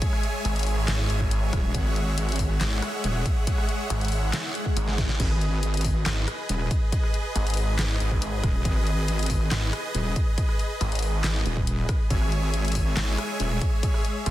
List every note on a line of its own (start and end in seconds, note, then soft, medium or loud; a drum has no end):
0.00 5.16 G#3 medium
0.00 5.16 G#4 medium
0.00 5.16 C#5 medium
0.00 5.16 E5 medium
0.00 1.71 G#5 medium
0.00 kick loud
0.00 closed hi-hat medium
0.13 cross-stick medium
0.23 closed hi-hat medium
0.45 0.86 G#1 loud
0.45 closed hi-hat medium
0.56 closed hi-hat soft
0.59 closed hi-hat medium
0.63 closed hi-hat medium
0.63 open hi-hat loud
0.88 1.08 G#1 loud
0.88 snare loud
0.88 clap medium
0.88 closed hi-hat medium
1.10 1.51 G#1 loud
1.10 closed hi-hat medium
1.21 kick medium
1.31 closed hi-hat medium
1.53 1.73 D#1 loud
1.53 kick loud
1.53 cross-stick medium
1.53 closed hi-hat medium
1.74 2.59 G#1 loud
1.74 5.16 F#5 medium
1.74 kick loud
1.74 closed hi-hat medium
1.86 cross-stick medium
1.96 closed hi-hat medium
2.18 closed hi-hat medium
2.29 closed hi-hat medium
2.32 closed hi-hat medium
2.36 kick medium
2.36 closed hi-hat medium
2.36 open hi-hat loud
2.61 2.81 G#1 loud
2.61 snare loud
2.61 clap medium
2.61 closed hi-hat medium
2.82 cross-stick medium
2.82 closed hi-hat medium
3.04 3.24 D#1 loud
3.04 closed hi-hat medium
3.26 kick loud
3.26 closed hi-hat medium
3.47 kick loud
3.47 closed hi-hat medium
3.58 cross-stick medium
3.69 closed hi-hat medium
3.90 4.32 G#1 loud
3.90 closed hi-hat medium
4.01 closed hi-hat medium
4.05 closed hi-hat medium
4.08 closed hi-hat medium
4.08 open hi-hat loud
4.33 snare loud
4.33 clap medium
4.33 closed hi-hat medium
4.33 swell medium
4.55 closed hi-hat medium
4.66 kick medium
4.77 5.07 G#1 loud
4.77 closed hi-hat medium
4.88 snare medium
4.98 kick loud
4.98 snare medium
4.98 closed hi-hat medium
5.09 snare medium
5.20 6.04 G#1 loud
5.20 12.06 G#4 medium
5.20 12.06 B4 medium
5.20 12.06 D#5 loud
5.20 kick loud
5.20 closed hi-hat medium
5.20 crash medium
5.31 cross-stick soft
5.41 closed hi-hat medium
5.63 closed hi-hat medium
5.74 closed hi-hat medium
5.77 closed hi-hat medium
5.81 kick medium
5.81 closed hi-hat medium
5.81 open hi-hat medium
6.06 6.26 G#1 loud
6.06 snare loud
6.06 clap loud
6.06 closed hi-hat medium
6.28 cross-stick medium
6.28 closed hi-hat medium
6.49 6.69 D#1 medium
6.49 closed hi-hat medium
6.71 kick loud
6.71 closed hi-hat medium
6.92 kick loud
6.92 closed hi-hat medium
7.03 cross-stick soft
7.14 closed hi-hat medium
7.36 7.77 G#1 loud
7.36 closed hi-hat medium
7.47 closed hi-hat medium
7.50 closed hi-hat medium
7.54 closed hi-hat medium
7.54 open hi-hat medium
7.79 7.99 G#1 loud
7.79 snare loud
7.79 clap loud
7.79 closed hi-hat medium
8.00 8.42 G#1 loud
8.00 closed hi-hat medium
8.11 kick medium
8.22 closed hi-hat medium
8.43 8.63 D#1 loud
8.43 kick loud
8.43 cross-stick medium
8.43 closed hi-hat medium
8.65 9.50 G#1 medium
8.65 kick loud
8.65 closed hi-hat medium
8.76 cross-stick medium
8.87 closed hi-hat medium
9.08 closed hi-hat medium
9.19 closed hi-hat soft
9.23 closed hi-hat medium
9.26 kick medium
9.26 closed hi-hat medium
9.26 open hi-hat medium
9.51 9.71 G#1 loud
9.51 snare loud
9.51 clap loud
9.51 closed hi-hat medium
9.73 cross-stick medium
9.73 closed hi-hat medium
9.95 10.14 D#1 loud
9.95 closed hi-hat medium
10.16 kick loud
10.16 closed hi-hat medium
10.38 kick loud
10.38 closed hi-hat medium
10.49 cross-stick medium
10.59 closed hi-hat medium
10.81 11.22 G#1 loud
10.81 closed hi-hat medium
10.92 closed hi-hat soft
10.95 closed hi-hat medium
10.99 closed hi-hat medium
10.99 open hi-hat medium
11.24 11.44 G#1 loud
11.24 snare loud
11.24 clap medium
11.24 closed hi-hat medium
11.46 11.87 D#1 loud
11.46 closed hi-hat medium
11.57 kick medium
11.67 closed hi-hat medium
11.89 kick loud
11.89 cross-stick medium
11.89 closed hi-hat medium
12.10 12.95 G#1 loud
12.10 14.30 G#3 medium
12.10 14.30 G#4 medium
12.10 14.30 C#5 medium
12.10 14.30 E5 medium
12.10 14.30 G#5 medium
12.10 kick loud
12.10 closed hi-hat medium
12.21 cross-stick medium
12.32 closed hi-hat medium
12.54 closed hi-hat medium
12.65 closed hi-hat soft
12.68 closed hi-hat medium
12.72 kick medium
12.72 closed hi-hat medium
12.72 open hi-hat loud
12.97 13.17 G#1 loud
12.97 snare loud
12.97 clap medium
12.97 closed hi-hat medium
13.18 cross-stick medium
13.18 closed hi-hat medium
13.40 13.60 D#1 loud
13.40 closed hi-hat medium
13.61 kick loud
13.61 closed hi-hat medium
13.83 kick loud
13.83 closed hi-hat medium
13.94 cross-stick medium
14.05 closed hi-hat medium
14.26 14.30 G#1 loud
14.26 closed hi-hat medium